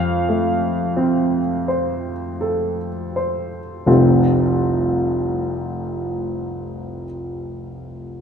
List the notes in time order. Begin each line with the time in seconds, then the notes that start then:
Already playing: F2 F5
0.29 A3
0.97 C4
1.68 C5
2.41 A4
3.16 C5
3.86 F1 C2 F3 A3 C4 F4